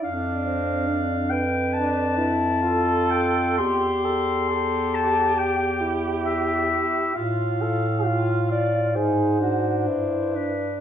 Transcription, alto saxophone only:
X:1
M:4/4
L:1/8
Q:1/4=67
K:C
V:1 name="Alto saxophone"
D C D B2 z A2 | G A G6 | F A F2 _A _G E D |]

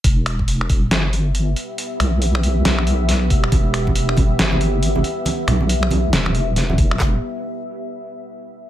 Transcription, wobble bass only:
X:1
M:4/4
L:1/8
Q:"Swing 16ths" 1/4=138
K:Em
V:1 name="Wobble bass" clef=bass
E,,,4 G,,,3 z | z B,,,3 B,,,3 E,,, | E,,,4 G,,,3 z | z B,,,3 E,,,4 |
E,,, z6 z |]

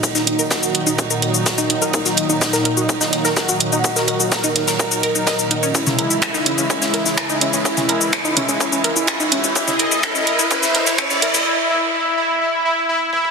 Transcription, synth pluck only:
X:1
M:4/4
L:1/16
Q:1/4=126
K:Dbdor
V:1 name="Synth pluck"
z E E B B G z E E B B G z E E B | B G z E E B B G z E E B B G z E | E B B G z E E B B G B E e z E D | D D B F z E D D D D B F z E D D |
D D B F z E D D D D B F z E D D | D D B F D D B F D D B F D D B F | z16 |]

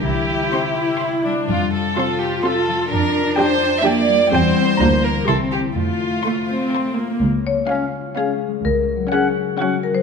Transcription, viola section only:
X:1
M:3/4
L:1/8
Q:1/4=126
K:F
V:1 name="Viola section"
z2 C E2 D | z2 [CF]2 [CF]2 | z2 [DG]2 [DG]2 | [CG]2 [DF]2 [EG]2 |
z2 A, C2 B, | [K:Db] z2 D2 D2 | z2 D2 D2 |]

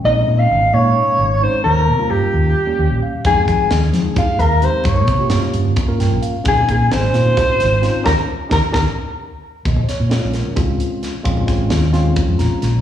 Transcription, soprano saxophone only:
X:1
M:7/8
L:1/16
Q:1/4=131
K:Bbdor
V:1 name="Soprano saxophone"
e3 f3 d6 c2 | B4 G8 z2 | A2 A4 z2 f2 B2 c2 | d4 z8 z2 |
A2 A2 c8- c2 | B2 z2 B2 B2 z6 | [K:Bbm] z12 z2 | z12 z2 |]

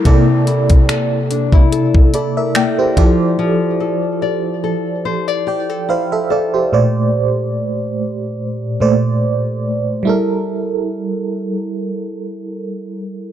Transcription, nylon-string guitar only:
X:1
M:4/4
L:1/16
Q:"Swing 16ths" 1/4=72
K:Gdor
V:1 name="Nylon-string guitar"
C,2 E2 A2 D E A2 E2 B,2 F,2 | F,2 A2 d2 A2 c d G A E2 A2 | z16 | z16 |]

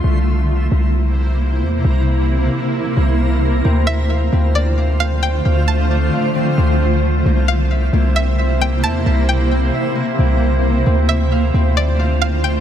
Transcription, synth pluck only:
X:1
M:4/4
L:1/8
Q:1/4=133
K:Dm
V:1 name="Synth pluck"
z8 | z8 | z e z2 d2 f g | z a3 z4 |
z f z2 e2 g a | z g6- g | z e z2 d2 f g |]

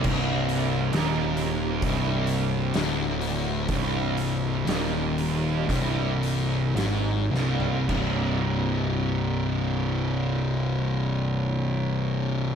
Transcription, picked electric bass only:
X:1
M:4/4
L:1/8
Q:1/4=58
K:Cm
V:1 name="Picked electric bass" clef=bass
C,,,2 E,,,2 C,,,2 D,,,2 | C,,,2 E,,,2 C,,,2 A,,, C,,, | C,,,8 |]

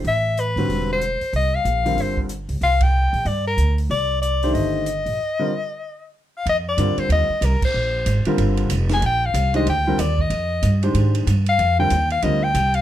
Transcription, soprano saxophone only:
X:1
M:4/4
L:1/8
Q:"Swing" 1/4=187
K:Clyd
V:1 name="Soprano saxophone"
e2 B3 c3 | _e =f3 c z3 | =f g3 d _B2 z | d2 d2 _e4- |
_e6 z =f | [K:Fdor] e d2 c e2 B c- | c3 z4 a | g f2 e g2 d e- |
e3 z4 f- | f g2 f e g2 f |]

